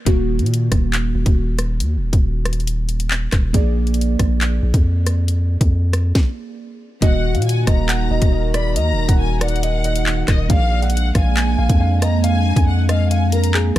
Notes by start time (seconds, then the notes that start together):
0.05 D#1 D#3 A#3 F#4, kick, closed hi-hat
0.39 A#2, closed hi-hat
0.46 closed hi-hat
0.54 closed hi-hat
0.72 D#1, kick, cross-stick, closed hi-hat
0.93 clap, closed hi-hat
1.15 D#1
1.26 D#1, kick, closed hi-hat
1.59 cross-stick, closed hi-hat
1.80 D#2, closed hi-hat
1.97 D#1
2.13 D#1, kick, closed hi-hat
2.45 cross-stick, closed hi-hat
2.53 closed hi-hat
2.60 closed hi-hat
2.67 closed hi-hat
2.89 closed hi-hat
3.00 closed hi-hat
3.11 clap
3.32 D#1, kick, cross-stick, clap, closed hi-hat
3.53 A#1 A#3 G#4 D5, kick, closed hi-hat
3.87 closed hi-hat
3.94 closed hi-hat
4.01 closed hi-hat
4.19 A#1, kick, cross-stick, closed hi-hat
4.41 clap, closed hi-hat
4.63 A#1
4.74 F2, kick, closed hi-hat
5.06 cross-stick, closed hi-hat
5.28 closed hi-hat
5.61 F2, kick, closed hi-hat
5.93 cross-stick, closed hi-hat
6.15 kick, snare
7.01 D#1 D#3 A#3 D#4 F#4 A#4 D#5 F#5, kick, closed hi-hat
7.35 A#2 F5, closed hi-hat
7.42 G#5, closed hi-hat
7.49 closed hi-hat
7.67 D#1 D#5 A#5, kick, cross-stick, closed hi-hat
7.89 F#5, clap, closed hi-hat
8.11 D#1 D#5
8.22 D#1, kick, closed hi-hat
8.32 D#5
8.54 D5 B5, cross-stick, closed hi-hat
8.76 D#2 D#5 A#5, closed hi-hat
8.92 D#1
9.09 D#1 F#5, kick, closed hi-hat
9.19 G#5
9.41 D5 F#5, cross-stick, closed hi-hat
9.48 closed hi-hat
9.56 closed hi-hat
9.63 D#5, closed hi-hat
9.84 D#5, closed hi-hat
9.96 closed hi-hat
10.06 clap
10.28 D#1 D#5, kick, cross-stick, clap, closed hi-hat
10.49 A#1 G#3 A#3 D4 G#4 D5 F5, kick, closed hi-hat
10.82 F#5, closed hi-hat
10.90 F#5, closed hi-hat
10.97 closed hi-hat
11.15 A#1 F5 G#5, kick, cross-stick, closed hi-hat
11.37 G#5, clap, closed hi-hat
11.59 A#1 F5
11.69 F2, kick, closed hi-hat
11.80 F5
12.02 D#5 A#5, cross-stick, closed hi-hat
12.23 F5 G#5, closed hi-hat
12.56 F2 G#5, kick, closed hi-hat
12.67 F#5
12.89 D#5 F5, cross-stick, closed hi-hat
13.11 F5 G#5, closed hi-hat
13.32 A#4 A#5, closed hi-hat
13.44 closed hi-hat
13.54 G#4, clap